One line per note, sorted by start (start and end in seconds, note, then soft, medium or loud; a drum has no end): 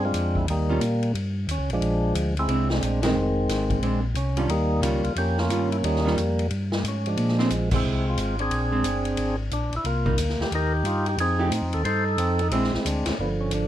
0.00 0.13 G2 medium
0.00 0.45 C4 medium
0.05 0.46 G#3 medium
0.05 0.46 D4 medium
0.05 0.38 F4 loud
0.14 0.46 F2 medium
0.14 hi-hat pedal soft
0.14 ride medium
0.35 0.47 E4 medium
0.35 kick soft
0.47 0.80 D#2 medium
0.47 1.12 G3 medium
0.47 1.12 A#3 medium
0.47 0.80 D#4 medium
0.47 ride medium
0.69 0.80 D#3 medium
0.69 0.80 G3 medium
0.69 0.81 C#4 medium
0.69 0.81 F4 medium
0.80 1.13 A#2 medium
0.80 hi-hat pedal medium
0.80 ride medium
1.03 ride soft
1.14 1.47 G2 medium
1.14 ride medium
1.47 1.58 D#2 loud
1.47 hi-hat pedal soft
1.47 ride medium
1.51 1.71 C#4 medium
1.58 1.70 C#2 medium
1.70 1.80 A#1 medium
1.70 2.35 F3 medium
1.70 2.35 G#3 medium
1.70 ride soft
1.74 2.14 D4 loud
1.81 2.14 A#1 medium
1.81 ride medium
2.15 2.48 D2 medium
2.15 hi-hat pedal medium
2.15 ride medium
2.37 3.01 G#3 medium
2.37 3.01 C4 medium
2.37 2.69 E4 medium
2.37 ride soft
2.48 2.81 C2 medium
2.48 2.67 G#3 soft
2.48 2.68 C4 soft
2.48 2.68 D4 medium
2.48 ride medium
2.70 2.83 D4 medium
2.70 snare medium
2.82 3.14 A#1 loud
2.82 3.05 D4 medium
2.82 hi-hat pedal soft
2.82 ride medium
3.02 3.14 D#3 medium
3.02 3.79 D#3 medium
3.02 3.15 G#3 medium
3.02 4.01 G#3 medium
3.02 3.15 C4 medium
3.02 4.01 C4 loud
3.02 snare medium
3.02 ride medium
3.14 3.48 F1 medium
3.48 3.81 G#1 medium
3.48 snare soft
3.48 hi-hat pedal medium
3.48 ride medium
3.70 kick medium
3.70 ride soft
3.82 4.15 A#1 medium
3.82 4.02 G#3 medium
3.82 4.02 C4 medium
3.82 4.02 D4 medium
3.82 ride medium
4.14 4.48 C2 medium
4.14 4.39 C#4 medium
4.14 hi-hat pedal soft
4.14 ride medium
4.37 4.48 D#3 medium
4.37 4.48 G3 medium
4.37 4.48 C#4 medium
4.37 4.50 D4 medium
4.37 4.49 F4 medium
4.37 ride soft
4.48 4.82 D#2 medium
4.48 5.13 G3 medium
4.48 5.13 A#3 medium
4.48 4.81 D#4 medium
4.48 ride medium
4.82 5.02 C#2 medium
4.82 5.02 D#3 medium
4.82 5.02 G3 medium
4.82 5.02 C#4 medium
4.82 5.02 F4 medium
4.82 hi-hat pedal medium
4.82 ride medium
5.03 5.10 C#2 soft
5.03 5.17 F4 medium
5.03 ride soft
5.16 5.49 F2 medium
5.16 5.38 A#3 medium
5.16 5.38 C#4 medium
5.16 5.39 G4 loud
5.16 ride medium
5.38 5.84 A#3 medium
5.38 6.02 C#4 medium
5.38 5.70 F4 loud
5.38 snare soft
5.49 5.82 G2 medium
5.49 5.69 D#3 soft
5.49 5.69 G3 soft
5.49 5.69 C#4 medium
5.49 5.70 F4 medium
5.49 hi-hat pedal medium
5.49 ride medium
5.72 5.77 E4 medium
5.72 ride soft
5.83 6.16 D#2 medium
5.83 6.47 G3 medium
5.83 6.48 A#3 medium
5.83 6.15 D#4 medium
5.83 ride medium
5.96 snare soft
6.05 6.16 D#3 medium
6.05 6.16 G3 medium
6.05 6.16 C#4 medium
6.05 6.17 F4 medium
6.05 snare soft
6.17 6.49 F2 medium
6.17 hi-hat pedal medium
6.17 ride medium
6.39 ride soft
6.51 6.83 G2 medium
6.51 ride medium
6.72 snare medium
6.84 7.17 G#2 medium
6.84 hi-hat pedal soft
6.84 ride medium
6.88 7.09 C#4 medium
7.06 7.70 F3 medium
7.06 7.70 G#3 medium
7.06 7.49 D4 medium
7.06 ride soft
7.17 7.50 A#2 loud
7.17 ride medium
7.28 snare soft
7.39 7.50 G#3 medium
7.39 7.50 C4 medium
7.39 7.50 D4 medium
7.39 snare soft
7.50 7.83 A#1 medium
7.50 hi-hat pedal medium
7.50 ride medium
7.71 8.36 G#3 medium
7.71 8.36 C4 medium
7.71 kick medium
7.71 crash medium
7.76 8.05 E4 medium
7.84 8.17 C2 medium
8.10 8.19 F4 medium
8.17 8.50 G#1 medium
8.17 8.39 F4 medium
8.17 hi-hat pedal medium
8.17 ride medium
8.39 9.36 C4 medium
8.39 9.36 D4 medium
8.39 9.37 G#4 medium
8.39 ride soft
8.50 8.83 A#1 medium
8.50 ride medium
8.72 8.83 G#3 medium
8.72 8.83 C4 medium
8.72 8.84 D4 medium
8.84 9.17 G1 medium
8.84 hi-hat pedal medium
8.84 ride medium
9.05 ride soft
9.17 9.50 G#1 medium
9.17 ride medium
9.51 9.71 A#1 medium
9.51 9.75 D4 medium
9.51 hi-hat pedal soft
9.51 ride medium
9.72 9.79 A#1 soft
9.72 ride soft
9.76 9.87 E4 medium
9.84 10.17 C2 medium
9.84 10.48 A#3 medium
9.84 10.17 F4 medium
9.84 ride medium
10.05 10.17 G3 medium
10.05 10.17 A#3 medium
10.05 10.17 D#4 medium
10.05 kick medium
10.17 10.37 D2 medium
10.17 hi-hat pedal medium
10.17 ride medium
10.29 snare soft
10.39 10.45 D2 soft
10.39 10.53 G4 medium
10.39 snare soft
10.51 10.84 D#2 medium
10.51 11.16 D#4 medium
10.51 ride medium
10.55 11.08 G4 medium
10.55 10.73 A#4 loud
10.84 11.17 G2 medium
10.84 11.06 F4 medium
10.84 hi-hat pedal soft
10.84 ride medium
11.06 11.19 G4 medium
11.06 ride soft
11.17 11.50 F2 medium
11.17 11.82 C4 medium
11.17 11.82 D#4 medium
11.17 11.51 G#4 loud
11.17 ride medium
11.39 11.50 F3 medium
11.39 11.50 A3 medium
11.39 11.50 D#4 medium
11.39 11.51 G4 medium
11.51 11.62 A2 medium
11.51 hi-hat pedal medium
11.51 ride medium
11.62 11.73 F2 medium
11.73 11.84 D#2 medium
11.73 11.84 A4 medium
11.73 ride soft
11.85 12.17 G2 medium
11.85 12.40 D#4 medium
11.85 12.48 A4 medium
11.85 12.05 C5 loud
11.85 ride medium
12.18 12.50 F2 medium
12.18 12.41 C4 medium
12.18 hi-hat pedal soft
12.18 ride medium
12.39 12.52 D#4 medium
12.39 ride soft
12.51 12.71 A#1 medium
12.51 12.71 G#3 medium
12.51 13.15 G#3 medium
12.51 12.71 C4 medium
12.51 13.15 C4 medium
12.51 12.71 D4 medium
12.51 12.74 E4 loud
12.51 ride medium
12.64 snare soft
12.72 12.78 A#1 soft
12.72 12.86 E4 medium
12.72 snare soft
12.85 13.04 D2 medium
12.85 13.06 D4 medium
12.85 hi-hat pedal medium
12.85 ride medium
13.05 13.12 D2 soft
13.05 13.18 C#4 medium
13.05 snare medium
13.05 ride medium
13.18 13.51 G1 medium
13.18 13.68 D3 medium
13.18 13.68 F3 medium
13.18 13.29 B3 loud
13.41 13.53 C#4 medium
13.51 13.68 G#1 medium
13.51 13.68 D4 medium
13.51 hi-hat pedal medium
13.51 ride medium